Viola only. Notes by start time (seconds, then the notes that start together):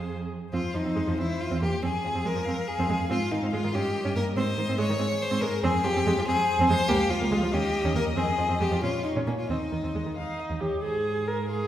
Already playing: G#4
0.53 C4
0.74 F3
0.85 C4
0.96 G#3
1.07 F3
1.18 C4
1.51 C4
1.62 A#3
1.83 C4
2.05 F3
2.15 C4
2.25 G#3
2.35 F3
2.47 C4
2.79 C4
2.90 G#3
3.10 C4
3.32 D#3
3.43 C4
3.53 G#3
3.64 D#3
3.74 C#4
4.05 C#4
4.16 A#3
4.37 C4
4.58 D#3
4.68 C4
4.78 G#3
4.89 D#3
4.99 C4
5.31 C4
5.42 G#3
5.64 C4
5.84 F3
5.96 C4
6.07 G#3
6.18 F3
6.28 C4
6.61 C4
6.70 G#3
6.89 A#3
7.11 F3
7.21 A#3
7.32 G#3
7.43 F3
7.53 C#4
7.85 C#4
7.96 A#3
8.17 C4
8.38 F3
8.49 C4
8.61 G#3
8.72 F3
8.83 C#4
9.17 C#4
9.27 A#3
9.50 C4
9.72 D#3
9.84 C4
9.95 G#3
10.06 D#3
10.17 D#4
10.61 G4
10.83 G#4
11.28 A#4
11.51 G#4